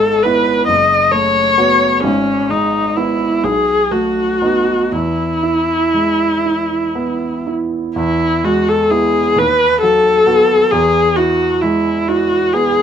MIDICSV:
0, 0, Header, 1, 3, 480
1, 0, Start_track
1, 0, Key_signature, 4, "major"
1, 0, Tempo, 895522
1, 1091, Time_signature, 6, 3, 24, 8
1, 1091, Tempo, 944882
1, 2051, Tempo, 1011804
1, 3971, Tempo, 944882
1, 4451, Tempo, 900901
1, 6532, End_track
2, 0, Start_track
2, 0, Title_t, "Viola"
2, 0, Program_c, 0, 41
2, 0, Note_on_c, 0, 69, 56
2, 123, Note_on_c, 0, 71, 55
2, 131, Note_off_c, 0, 69, 0
2, 358, Note_off_c, 0, 71, 0
2, 361, Note_on_c, 0, 75, 53
2, 597, Note_on_c, 0, 73, 64
2, 605, Note_off_c, 0, 75, 0
2, 1086, Note_off_c, 0, 73, 0
2, 1089, Note_on_c, 0, 61, 59
2, 1324, Note_on_c, 0, 63, 49
2, 1332, Note_off_c, 0, 61, 0
2, 1563, Note_on_c, 0, 64, 45
2, 1571, Note_off_c, 0, 63, 0
2, 1803, Note_on_c, 0, 68, 54
2, 1810, Note_off_c, 0, 64, 0
2, 2046, Note_on_c, 0, 66, 43
2, 2053, Note_off_c, 0, 68, 0
2, 2525, Note_on_c, 0, 64, 48
2, 2533, Note_off_c, 0, 66, 0
2, 3735, Note_off_c, 0, 64, 0
2, 3964, Note_on_c, 0, 64, 58
2, 4210, Note_on_c, 0, 66, 54
2, 4218, Note_off_c, 0, 64, 0
2, 4333, Note_on_c, 0, 69, 55
2, 4341, Note_off_c, 0, 66, 0
2, 4444, Note_on_c, 0, 68, 53
2, 4452, Note_off_c, 0, 69, 0
2, 4697, Note_on_c, 0, 71, 61
2, 4705, Note_off_c, 0, 68, 0
2, 4928, Note_off_c, 0, 71, 0
2, 4931, Note_on_c, 0, 69, 63
2, 5407, Note_on_c, 0, 68, 63
2, 5415, Note_off_c, 0, 69, 0
2, 5645, Note_on_c, 0, 66, 54
2, 5653, Note_off_c, 0, 68, 0
2, 5886, Note_on_c, 0, 64, 49
2, 5894, Note_off_c, 0, 66, 0
2, 6133, Note_on_c, 0, 66, 58
2, 6141, Note_off_c, 0, 64, 0
2, 6376, Note_on_c, 0, 68, 62
2, 6384, Note_off_c, 0, 66, 0
2, 6532, Note_off_c, 0, 68, 0
2, 6532, End_track
3, 0, Start_track
3, 0, Title_t, "Grand piano"
3, 0, Program_c, 1, 0
3, 0, Control_c, 1, 64, 127
3, 0, Note_on_c, 1, 32, 41
3, 0, Note_on_c, 1, 56, 26
3, 134, Note_on_c, 1, 59, 24
3, 135, Note_on_c, 1, 64, 28
3, 270, Note_off_c, 1, 56, 0
3, 342, Note_off_c, 1, 32, 0
3, 344, Note_off_c, 1, 59, 0
3, 344, Note_off_c, 1, 64, 0
3, 363, Note_on_c, 1, 30, 35
3, 370, Control_c, 1, 64, 0
3, 466, Control_c, 1, 64, 127
3, 597, Note_on_c, 1, 57, 29
3, 845, Note_on_c, 1, 59, 28
3, 847, Note_on_c, 1, 66, 32
3, 991, Note_off_c, 1, 57, 0
3, 1070, Note_off_c, 1, 59, 0
3, 1071, Note_off_c, 1, 30, 0
3, 1071, Note_off_c, 1, 66, 0
3, 1093, Note_on_c, 1, 32, 39
3, 1101, Control_c, 1, 64, 0
3, 1174, Control_c, 1, 64, 127
3, 1322, Note_on_c, 1, 56, 28
3, 1564, Note_on_c, 1, 59, 24
3, 1567, Note_on_c, 1, 64, 26
3, 1706, Note_off_c, 1, 56, 0
3, 1785, Note_off_c, 1, 59, 0
3, 1786, Note_off_c, 1, 32, 0
3, 1787, Note_off_c, 1, 64, 0
3, 1803, Note_on_c, 1, 35, 29
3, 1814, Control_c, 1, 64, 0
3, 1914, Control_c, 1, 64, 127
3, 2045, Note_on_c, 1, 57, 27
3, 2283, Note_on_c, 1, 63, 26
3, 2284, Note_on_c, 1, 59, 25
3, 2425, Note_off_c, 1, 57, 0
3, 2505, Note_off_c, 1, 35, 0
3, 2505, Note_off_c, 1, 59, 0
3, 2505, Note_off_c, 1, 63, 0
3, 2523, Note_on_c, 1, 40, 32
3, 2535, Control_c, 1, 64, 0
3, 2625, Control_c, 1, 64, 127
3, 2764, Note_on_c, 1, 64, 23
3, 3008, Note_on_c, 1, 56, 23
3, 3153, Note_off_c, 1, 64, 0
3, 3252, Note_on_c, 1, 64, 22
3, 3396, Note_off_c, 1, 56, 0
3, 3487, Note_on_c, 1, 59, 24
3, 3638, Note_off_c, 1, 64, 0
3, 3732, Note_on_c, 1, 64, 25
3, 3876, Note_off_c, 1, 59, 0
3, 3950, Note_off_c, 1, 40, 0
3, 3964, Note_on_c, 1, 40, 41
3, 3969, Note_off_c, 1, 64, 0
3, 3980, Control_c, 1, 64, 0
3, 4055, Control_c, 1, 64, 127
3, 4208, Note_on_c, 1, 56, 31
3, 4446, Note_on_c, 1, 59, 27
3, 4446, Note_on_c, 1, 64, 29
3, 4595, Note_off_c, 1, 56, 0
3, 4669, Note_off_c, 1, 40, 0
3, 4670, Note_off_c, 1, 59, 0
3, 4670, Note_off_c, 1, 64, 0
3, 4688, Note_on_c, 1, 39, 38
3, 4704, Control_c, 1, 64, 0
3, 4804, Control_c, 1, 64, 127
3, 4935, Note_on_c, 1, 54, 30
3, 5169, Note_on_c, 1, 59, 32
3, 5172, Note_on_c, 1, 66, 31
3, 5315, Note_off_c, 1, 54, 0
3, 5385, Note_off_c, 1, 39, 0
3, 5387, Note_off_c, 1, 59, 0
3, 5388, Note_off_c, 1, 66, 0
3, 5413, Note_on_c, 1, 40, 44
3, 5420, Control_c, 1, 64, 0
3, 5514, Control_c, 1, 64, 127
3, 5654, Note_on_c, 1, 64, 28
3, 5897, Note_on_c, 1, 56, 26
3, 6035, Note_off_c, 1, 64, 0
3, 6141, Note_on_c, 1, 64, 34
3, 6279, Note_off_c, 1, 56, 0
3, 6383, Note_on_c, 1, 59, 33
3, 6519, Note_off_c, 1, 64, 0
3, 6532, Note_off_c, 1, 40, 0
3, 6532, Note_off_c, 1, 59, 0
3, 6532, End_track
0, 0, End_of_file